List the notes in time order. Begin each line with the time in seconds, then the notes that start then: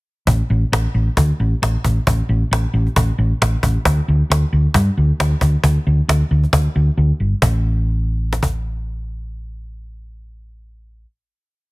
0.27 A1, cajon bass
0.50 A1
0.72 A1, cajon slap
0.94 A1
1.17 D2, cajon bass
1.40 A1
1.62 A1, cajon slap
1.84 A1, cajon bass, cajon slap
2.07 A1, cajon bass
2.29 A1
2.51 A1, cajon slap
2.73 A1
2.87 cajon slap
2.96 A1, cajon bass
3.18 A1
3.42 A1, cajon slap
3.63 A1, cajon bass
3.85 D2, cajon bass
4.08 D2
4.30 D2, cajon slap
4.53 D2
4.74 G2, cajon bass
4.97 D2
5.20 D2, cajon slap
5.41 D2, cajon bass, cajon slap
5.64 D2, cajon bass
5.87 D2
6.08 D2, cajon slap
6.31 D2
6.44 cajon slap
6.53 D2, cajon bass
6.76 D2
6.97 D2
7.20 G1
7.42 A1, cajon bass
8.33 cajon slap
8.43 cajon bass